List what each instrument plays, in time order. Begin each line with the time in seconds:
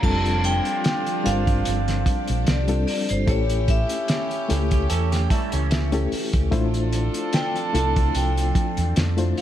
0.02 fingered electric bass F1, string machine F3 D4 G4 A4, reed electric piano G3 C4 D4 F4 A4, horn section C4 D4 F4, vibraphone A5, kick, crash
0.26 closed hi-hat
0.44 vibraphone G5, closed hi-hat
0.65 closed hi-hat
0.84 snare, closed hi-hat
1.07 closed hi-hat
1.24 fingered electric bass G1, reed electric piano G3 C4 D4 F4 A#4, vibraphone F5, closed hi-hat
1.32 reed electric piano C5
1.47 kick, closed hi-hat
1.65 fingered electric bass G1, closed hi-hat
1.88 snare, closed hi-hat
2.06 kick, closed hi-hat
2.28 fingered electric bass A#1, closed hi-hat
2.47 fingered electric bass C2, vibraphone D5, snare, closed hi-hat
2.68 reed electric piano G3 C4 D4 F4 A4, closed hi-hat
2.87 vibraphone D5, open hi-hat
3.09 fingered electric bass G1, vibraphone C5, closed hi-hat
3.26 fingered electric bass A1, reed electric piano A3 C#4 E4 G4 A4, string machine A3 C#4, horn section C#4 E4 G4, vibraphone C#5, kick, closed hi-hat
3.50 closed hi-hat
3.68 vibraphone E5, kick, closed hi-hat
3.89 closed hi-hat
4.08 snare, closed hi-hat
4.31 closed hi-hat
4.48 fingered electric bass C#2, reed electric piano A3 C#4 E4 G4 A4, closed hi-hat
4.71 clean electric guitar G4, kick, closed hi-hat
4.90 fingered electric bass E2, clean electric guitar C#4 A4, closed hi-hat
5.12 clean electric guitar G4, snare, closed hi-hat
5.30 clean electric guitar G3 E4, reed electric piano A5, kick, closed hi-hat
5.52 fingered electric bass C#2, clean electric guitar E3 C#4, closed hi-hat
5.71 reed electric piano E5, snare, closed hi-hat
5.92 reed electric piano A3 C#4 E4 G4 A4, closed hi-hat
6.12 muted fingered electric bass stroke, open hi-hat
6.33 fingered electric bass C#2, kick, closed hi-hat
6.51 fingered electric bass A1, string machine F3 C4 D4, reed electric piano A3 D4 E4 F4 C5, horn section D4 F4 A4, kick, closed hi-hat
6.74 closed hi-hat
6.93 closed hi-hat
7.14 closed hi-hat
7.33 vibraphone G5, snare, closed hi-hat
7.56 vibraphone A5, closed hi-hat
7.73 fingered electric bass C2, reed electric piano A3 D4 E4 F4 A4, vibraphone A5, closed hi-hat
7.96 kick, closed hi-hat
8.15 fingered electric bass C2, vibraphone G5, closed hi-hat
8.38 closed hi-hat
8.55 kick, closed hi-hat
8.77 fingered electric bass E2, closed hi-hat
8.96 fingered electric bass F2, snare, closed hi-hat
9.17 reed electric piano A3 D4 E4 F4 C5, closed hi-hat
9.37 vibraphone F5, open hi-hat